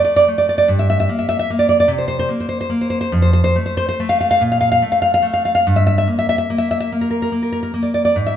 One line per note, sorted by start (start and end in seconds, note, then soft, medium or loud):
0.00 0.27 A3 soft
0.04 0.15 D5 medium
0.16 0.27 D5 medium
0.28 0.65 A3 soft
0.38 0.48 D5 medium
0.49 0.57 D5 medium
0.58 0.68 D5 medium
0.68 1.07 G2 medium
0.79 0.88 E5 medium
0.90 0.99 E5 medium
1.00 1.09 E5 medium
1.09 1.49 A#3 medium
1.19 1.28 E5 medium
1.29 1.38 E5 loud
1.39 1.49 E5 loud
1.50 1.86 A#3 medium
1.59 1.68 D5 medium
1.69 1.79 D5 medium
1.80 1.89 D5 medium
1.88 2.27 C3 medium
1.98 2.07 C5 medium
2.08 2.18 C5 medium
2.19 2.29 C5 medium
2.29 2.68 A#3 medium
2.40 2.48 C5 medium
2.49 2.59 C5 medium
2.61 2.70 C5 medium
2.70 3.08 A#3 medium
2.81 2.89 C5 medium
2.90 3.00 C5 medium
3.01 3.12 C5 medium
3.12 3.56 F2 medium
3.22 3.32 C5 medium
3.33 3.43 C5 medium
3.44 3.56 C5 medium
3.55 3.99 A3 medium
3.66 3.76 C5 medium
3.77 3.87 C5 medium
3.89 4.00 C5 medium
4.00 4.39 A3 medium
4.09 4.19 F5 medium
4.20 4.30 F5 medium
4.31 4.42 F5 loud
4.41 4.82 A#2 medium
4.52 4.59 F5 medium
4.61 4.70 F5 medium
4.72 4.83 F5 medium
4.82 5.21 A3 medium
4.92 5.01 F5 medium
5.02 5.13 F5 medium
5.14 5.25 F5 loud
5.22 5.61 A3 soft
5.33 5.44 F5 medium
5.45 5.54 F5 medium
5.55 5.66 F5 medium
5.67 6.07 G2 medium
5.76 5.85 E5 medium
5.87 5.97 E5 medium
5.98 6.08 E5 medium
6.08 6.49 A#3 soft
6.19 6.28 E5 medium
6.29 6.37 E5 medium
6.38 6.49 E5 medium
6.50 6.91 A#3 medium
6.58 6.69 E5 medium
6.71 6.79 E5 medium
6.80 6.91 E5 medium
6.92 7.31 A#3 medium
7.01 7.09 A#4 medium
7.11 7.21 A#4 medium
7.22 7.32 A#4 medium
7.32 7.73 A#3 soft
7.43 7.51 A#4 medium
7.52 7.61 A#4 medium
7.63 7.74 A#4 medium
7.74 8.12 A#3 soft
7.83 7.93 D5 medium
7.94 8.04 D5 medium
8.05 8.16 D5 medium
8.16 8.37 G#2 medium
8.26 8.35 E5 medium